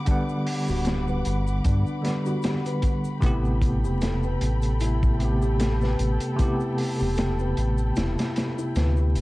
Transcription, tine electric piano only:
Already playing: D3 G3 B3 F#5
0.05 D3 G3 B3
0.11 F#5
2.02 D3 G3 B3
3.20 C3 A3 B3
3.26 G4
5.18 C3 A3 B3
5.24 G4
6.36 C3 A3 B3
6.42 G4

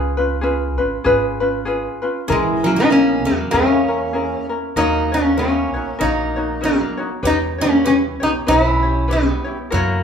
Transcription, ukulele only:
Already playing: C#4 F4 G#4 B4
0.17 C#4 F4 B4
0.41 C#4 F4 G#4 B4
0.78 C#4 F4 B4
1.04 C#4 F4 G#4 B4
1.40 C#4 F4 B4
1.65 C#4 F4 G#4 B4
2.02 C#4 F4 B4
2.28 C#4 E4 G#4 A#4
2.63 C#4 E4 A#4
2.90 C#4 E4 G#4 A#4
3.26 C#4 E4 A#4
3.52 C#4 E4 G#4 A#4
3.88 C#4 E4 A#4
4.13 C#4 E4 G#4 A#4
4.49 C#4 E4 A#4
4.76 D#4 F#4 A#4 C#5
5.12 D#4 F#4 C#5
5.37 D#4 F#4 A#4 C#5
5.74 D#4 F#4 C#5
5.99 D#4 F#4 A#4 C#5
6.36 D#4 F#4 C#5
6.61 D#4 F#4 A#4 C#5
6.97 D#4 F#4 C#5
7.23 G4 B4 C#5
7.58 E4 G4 C#5
7.84 E4 G4 B4 C#5
8.20 G4 C#5
8.47 E4 G4 B4 C#5
8.83 E4 G4 C#5
9.08 E4 G4 B4 C#5
9.44 E4 G4 C#5
9.71 E4 F#4 A#4 C#5

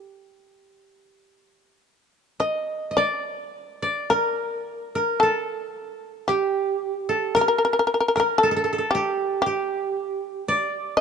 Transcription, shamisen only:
Already playing: G4
2.40 D#5
2.71 D5
2.97 D5
4.10 A#4
5.20 A4
6.28 G4
7.35 A#4
7.41 A#4
7.48 A#4
7.58 A#4
7.65 A#4
7.73 A#4
7.79 A#4
7.87 A#4
7.94 A#4
8.00 A#4
8.08 A#4
8.16 A#4
8.20 A#4
8.38 A4
8.91 G4
9.42 G4
10.97 D#5

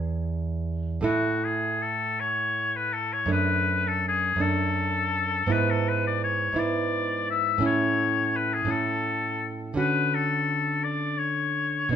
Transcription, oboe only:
1.05 F#4
1.44 G#4
1.82 A4
2.20 C#5
2.76 B4
2.93 A4
3.13 C#5
3.32 B4
3.88 A4
4.08 G#4
4.41 A4
5.52 B4
5.71 A4
5.89 B4
6.07 D5
6.24 C#5
6.59 D5
7.30 E5
7.66 C#5
8.36 B4
8.54 G#4
8.71 A4
9.78 B4
10.15 A4
10.84 D5
11.18 C#5

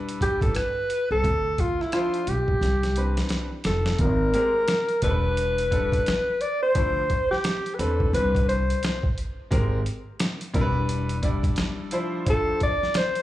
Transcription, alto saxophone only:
0.22 G4
0.42 A4
0.56 B4
1.11 A4
1.60 F4
1.81 E4
1.94 F4
2.29 G4
3.66 A4
4.01 A#4
5.04 B4
6.41 D5
6.63 C5
7.31 G4
7.74 B4
7.79 A4
8.14 B4
8.48 C5
12.30 A4
12.63 D5
12.97 C5

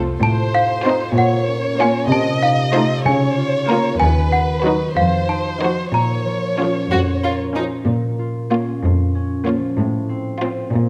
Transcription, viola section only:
Already playing: A3 C4
0.85 C4 D#4
1.79 A#3 C#4
2.74 A3 D#4
3.69 A#3 F4
4.64 F#3 D#4
5.61 F3 D#4
6.58 F3 C#4
7.55 F3 C#4
8.51 A#3
9.46 A#3
10.42 C4

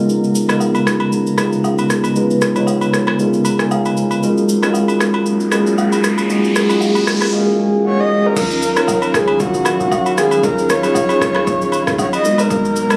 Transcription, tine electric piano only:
Already playing: C#3 G#3 B3 D#4 F4 A#4
0.49 C#3 G#3 B3 D#4 F4 A#4
1.38 C#3 G#3 B3 D#4 F4 G#4
2.16 C#3 G#3 B3 D#4 F4 B4
2.56 C#3 G#3 B3 D#4 F4 C#5
3.19 C#3 G#3 B3 D#4 F4 A#4
3.45 A#5
3.60 G#5
3.71 F5
4.22 G#3 C#4 F4 F#4 A#4
4.63 G#3 C#4 F4 F#4 A#4
5.52 G#3 C#4 F4 F#4 G#4
6.29 G#3 C#4 F4 F#4 G#4
6.69 G#3 C#4 F4 F#4 G4
6.76 G#4
7.33 G#3 C#4 F#4 G#4 F5
7.40 A#4
7.59 G#5
7.85 F#5
8.36 F#3 C#4 D#4 F4 A#4
8.76 F#3 C#4 D#4 F4 C#5
9.65 F#3 C#4 D#4 A#4 F5
10.43 F#3 C#4 D#4 F4 G#4
10.83 F#3 C#4 D#4 F4 G#4
11.09 F#3 C#4 D#4 F4 G#4
12.24 G#3 B3 D#4 F#4 A#4
12.90 G#3 B3 D#4 F#4 A#4

